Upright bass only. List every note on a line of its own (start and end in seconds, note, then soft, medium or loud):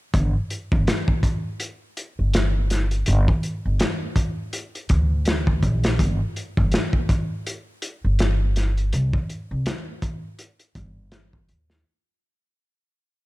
0.14 0.33 G1 medium
0.72 0.86 G1 medium
2.19 3.04 G1 medium
3.08 3.26 G1 loud
3.65 3.79 G1 medium
4.90 5.60 D2 medium
5.63 5.96 A#1 medium
6.00 6.18 G1 loud
6.58 6.71 G1 medium
8.04 8.90 G1 medium
8.93 9.11 C2 loud
9.51 9.64 C2 medium
10.76 11.45 G1 medium
11.49 11.82 D#2 medium